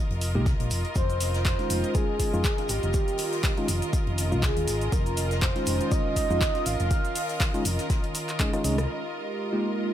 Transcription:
Already playing: string section F4 A#4 D#5
0.10 fingered electric bass F1, closed hi-hat
0.21 open hi-hat, shaker
0.35 fingered electric bass C2, tine electric piano G#3 A#3 D#4 G4
0.46 kick, snare, closed hi-hat, shaker
0.60 fingered electric bass A#1, closed hi-hat
0.70 fingered electric bass F1, open hi-hat, shaker
0.85 closed hi-hat
0.95 fingered electric bass F1, analog synth pad D#3 C#4 F4, soft synth lead C5, kick, closed hi-hat, shaker
1.10 closed hi-hat, shaker
1.20 open hi-hat, shaker
1.34 snare, closed hi-hat, shaker
1.45 soft synth lead C5, kick, snare, clap, closed hi-hat, shaker
1.59 tine electric piano G#3 C#4 D#4 F4, snare, closed hi-hat
1.70 fingered electric bass F1, open hi-hat, shaker
1.84 closed hi-hat, shaker
1.95 soft synth lead G#4, kick, closed hi-hat, shaker
2.20 kick, open hi-hat, shaker
2.33 fingered electric bass F2, tine electric piano G#3 C#4 D#4 F4, shaker
2.44 kick, snare, clap, closed hi-hat, shaker
2.58 snare, closed hi-hat
2.69 fingered electric bass G#1, soft synth lead G4, snare, open hi-hat, shaker
2.83 fingered electric bass F1, closed hi-hat, shaker
2.94 kick, closed hi-hat, shaker
3.08 closed hi-hat, shaker
3.17 open hi-hat, shaker
3.33 snare, closed hi-hat, shaker
3.44 kick, snare, clap, closed hi-hat, shaker
3.57 tine electric piano G#3 C#4 D#4 F4, closed hi-hat
3.68 fingered electric bass F1, open hi-hat, shaker
3.82 closed hi-hat, shaker
3.93 kick, closed hi-hat, shaker
4.07 fingered electric bass F1, closed hi-hat
4.18 open hi-hat, shaker
4.32 fingered electric bass C2, tine electric piano G#3 C#4 D#4 F4, shaker
4.43 soft synth lead G#4, kick, snare, clap, closed hi-hat, shaker
4.57 fingered electric bass D#2, closed hi-hat
4.68 fingered electric bass G#1, open hi-hat, shaker
4.81 closed hi-hat, shaker
4.92 fingered electric bass F1, soft synth lead A#4, kick, closed hi-hat, shaker
5.06 closed hi-hat, shaker
5.17 open hi-hat, shaker
5.31 snare, closed hi-hat, shaker
5.42 soft synth lead C5, kick, snare, clap, closed hi-hat, shaker
5.56 tine electric piano G#3 C#4 D#4 F4, snare, closed hi-hat
5.66 fingered electric bass F1, open hi-hat, shaker
5.81 closed hi-hat, shaker
5.92 soft synth lead D#5, kick, closed hi-hat, shaker
6.16 soft synth lead D#5, kick, open hi-hat, shaker
6.30 fingered electric bass F2, tine electric piano G#3 C#4 D#4 F4, shaker
6.41 kick, snare, clap, closed hi-hat, shaker
6.55 snare, closed hi-hat
6.66 fingered electric bass G#1, soft synth lead F5, snare, open hi-hat, shaker
6.80 fingered electric bass F1, closed hi-hat, shaker
6.91 kick, closed hi-hat, shaker
7.05 closed hi-hat, shaker
7.15 open hi-hat, shaker
7.29 snare, closed hi-hat, shaker
7.40 kick, snare, clap, closed hi-hat, shaker
7.54 tine electric piano G#3 C#4 D#4 F4, closed hi-hat, shaker
7.65 fingered electric bass F1, open hi-hat, shaker
7.79 snare, closed hi-hat, shaker
7.90 kick, snare, closed hi-hat, shaker
8.04 closed hi-hat
8.15 open hi-hat, shaker
8.29 clap, closed hi-hat, shaker
8.39 tine electric piano G#3 C#4 D#4 G#4, kick, cross-stick, clap, closed hi-hat, shaker
8.53 tine electric piano G#3 C#4 D#4 F4, cross-stick, closed hi-hat, shaker
8.64 fingered electric bass C2, tine electric piano G#3 C#4 D#4 G#4, open hi-hat, shaker
8.78 cross-stick, closed hi-hat, shaker
8.89 analog synth pad G#3 D#4 F4 G4 A#4
9.53 tine electric piano G#3 A#3 D#4 F4 G4

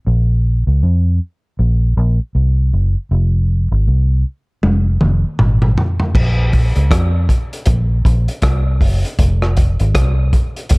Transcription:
0.07 fingered electric bass A#1
0.67 fingered electric bass C#2
0.83 fingered electric bass F2
1.59 fingered electric bass A#1
1.97 fingered electric bass A#1
2.35 fingered electric bass C2
2.73 fingered electric bass F#1
3.11 fingered electric bass F1
3.72 fingered electric bass G#1
3.87 fingered electric bass C2
4.63 fingered electric bass F1, high tom
5.01 fingered electric bass F1, mid tom
5.39 fingered electric bass G#1, mid tom
5.62 mid tom
5.78 floor tom
6.00 floor tom
6.15 fingered electric bass A#1, kick, crash
6.53 kick, open hi-hat
6.76 fingered electric bass C#2, closed hi-hat
6.91 fingered electric bass F2, kick, cross-stick, closed hi-hat
7.29 kick, closed hi-hat
7.53 closed hi-hat
7.66 fingered electric bass A#1, kick, closed hi-hat
8.05 fingered electric bass A#1, kick, closed hi-hat
8.28 closed hi-hat
8.42 fingered electric bass C2, kick, cross-stick, closed hi-hat
8.81 fingered electric bass F#1, kick, open hi-hat
9.05 closed hi-hat
9.19 fingered electric bass F1, kick, closed hi-hat
9.42 cross-stick
9.57 kick, closed hi-hat
9.80 fingered electric bass G#1, closed hi-hat
9.95 fingered electric bass C2, kick, cross-stick, closed hi-hat
10.33 kick, closed hi-hat
10.56 closed hi-hat
10.69 fingered electric bass F1, kick, closed hi-hat

